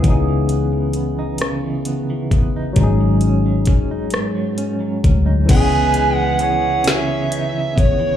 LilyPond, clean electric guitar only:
\new Staff \with { instrumentName = "Clean electric guitar" } { \clef bass \time 6/8 \key cis \minor \tempo 4. = 44 cis16 e16 b16 e16 b16 dis'16 cis16 e16 b16 e16 b16 dis'16 | gis,16 fis16 cis'16 fis16 cis'16 dis'16 gis,16 fis16 cis'16 fis16 cis'16 dis'16 | cis16 b16 dis'16 e16 b16 e16 cis16 b16 dis'16 e16 b16 e16 | }